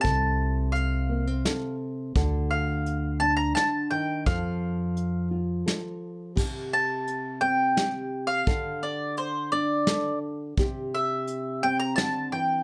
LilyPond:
<<
  \new Staff \with { instrumentName = "Mandolin" } { \time 3/4 \key f \mixolydian \tempo 4 = 86 a''4 f''4. r8 | r8 f''4 a''16 bes''16 a''8 g''8 | f''4. r4. | r8 a''4 g''4~ g''16 f''16~ |
f''8 d''8 c''8 d''4 r8 | r8 e''4 g''16 bes''16 a''8 g''8 | }
  \new Staff \with { instrumentName = "Nylon-string guitar" } { \time 3/4 \key f \mixolydian << { a'4. bes16 c'16 a'4 | a'4. d'4. | a'4. f'8 a'4 | g'4. c'8 g'4 |
a'4. d'8 a'4 | g'4. c'4. | } \\ { c2. | d2 d8 ees8 | f2. | c2. |
d2. | c2 d8 e8 | } >> }
  \new Staff \with { instrumentName = "Upright bass" } { \clef bass \time 3/4 \key f \mixolydian c,2 r4 | d,2 r4 | f,2 r4 | r2. |
r2. | r2. | }
  \new DrumStaff \with { instrumentName = "Drums" } \drummode { \time 3/4 <hh bd>4 hh4 <hh sn>4 | <hh bd>4 hh4 <hh sn>4 | <hh bd>4 hh4 <hh sn>4 | <cymc bd>4 hh4 <hh sn>4 |
<hh bd>4 hh4 <hh sn>4 | <hh bd>4 hh4 <hh sn>4 | }
>>